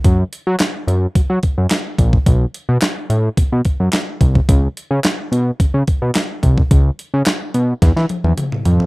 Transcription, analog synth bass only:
X:1
M:4/4
L:1/16
Q:1/4=108
K:Bmix
V:1 name="Analog synth bass" clef=bass
F,,2 z F, z2 F,,2 F, F, z F,, z2 ^A,,,2 | B,,,2 z B,, z2 A,,2 B,, B,, z F,, z2 ^B,,,2 | C,,2 z C, z2 B,,2 C, C, z B,, z2 ^B,,,2 | C,,2 z C, z2 B,,2 E,, E, z E,, z2 ^E,,2 |]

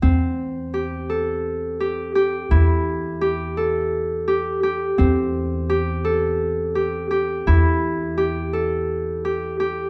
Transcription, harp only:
X:1
M:7/8
L:1/8
Q:1/4=85
K:Em
V:1 name="Harp"
C2 G A2 G G | E2 G A2 G G | C2 G A2 G G | E2 G A2 G G |]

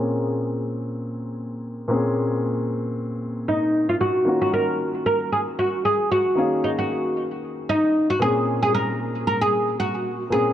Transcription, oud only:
X:1
M:4/4
L:1/16
Q:"Swing 16ths" 1/4=114
K:Bbphr
V:1 name="Oud"
z16 | z8 z2 E3 F G2- | G G B4 B2 A2 G2 A2 G2- | G2 E G4 z3 E3 G A2- |
A A B4 B A3 G4 A2 |]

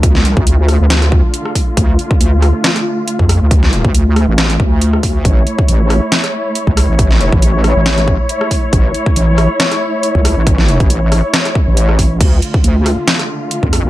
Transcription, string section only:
X:1
M:4/4
L:1/8
Q:"Swing 16ths" 1/4=138
K:Dm
V:1 name="String section"
[D,A,F]8- | [D,A,F]8- | [D,A,F]8 | [E^c]8- |
[E^c]8- | [E^c]8- | [E^c]8 | [D,A,F]8 |]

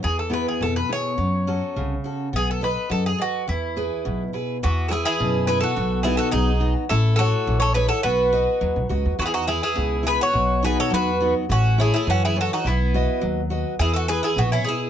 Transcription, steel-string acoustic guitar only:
X:1
M:2/4
L:1/8
Q:1/4=105
K:E
V:1 name="Steel-string acoustic guitar"
E, [B,EG] B,, [B,EG] | F, [CFA] C, [CFA] | B, [ABd] F, [ABd] | E, [EGB] B,, [EGB] |
E, [EGB] B,, [EGB] | B,, [B,DF] F, [B,DF] | A, [EAc] E, [EAc] | B, [FBd] F, [FBd] |
E, [EGB] B,, [EGB] | B,, [B,DF] F, [B,DF] | A, [EAc] E, [EAc] | B, [FBd] F, [FBd] |
E, [EGB] B,, [EGB] |]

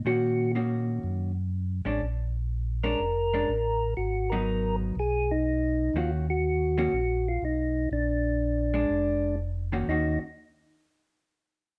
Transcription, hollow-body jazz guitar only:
X:1
M:4/4
L:1/8
Q:"Swing" 1/4=122
K:Ebm
V:1 name="Hollow-body jazz guitar"
[E,B,DG]2 [E,B,DG]3 z2 [A,D=D] | z3 [A,^C=D] z [A,CD] z2 | z [G,CE]3 z4 | [E,B,DG] z2 [E,B,DG] z4 |
z3 [A,=D]3 z [E,B,^CG] | [E,B,DG] z6 z |]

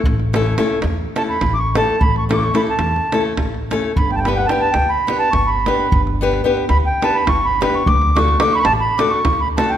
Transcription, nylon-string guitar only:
X:1
M:7/8
L:1/8
Q:1/4=107
K:Amix
V:1 name="Nylon-string guitar"
z [A,CEA] [A,CEA] z [A,CEA] z [A,CEA] | z [A,CEA] [A,CEA] z [A,CEA] z [A,CEA] | z [B,DGB] [B,DGB] z [B,DGB] z [B,DGB] | z [B,DGB] [B,DGB] z [B,DGB] z [B,DGB] |
z [A,DFA] [A,DFA] z [A,DFA] z [A,DFA] |]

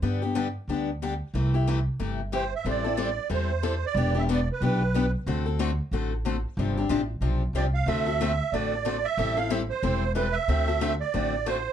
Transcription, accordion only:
X:1
M:4/4
L:1/8
Q:"Swing" 1/4=184
K:Am
V:1 name="Accordion"
z8 | z6 c e | d4 c3 d- | d e d B4 z |
z8 | z6 d f | e4 d3 e- | e f e c3 B e- |
e3 d3 c2 |]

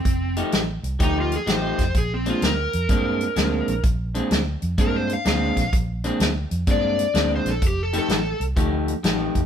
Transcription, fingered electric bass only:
X:1
M:4/4
L:1/8
Q:"Swing" 1/4=127
K:Bb
V:1 name="Fingered electric bass" clef=bass
F,,,2 A,,, C,, D,,2 A,,, F,,, | B,,,2 D,, F,, G,,2 D,, B,,, | B,,,2 D,, F,, G,,2 D,, B,,, | B,,,2 D,, F,, G,,2 D,, B,,, |
F,,,2 A,,, C,, D,,2 A,,, F,,, |]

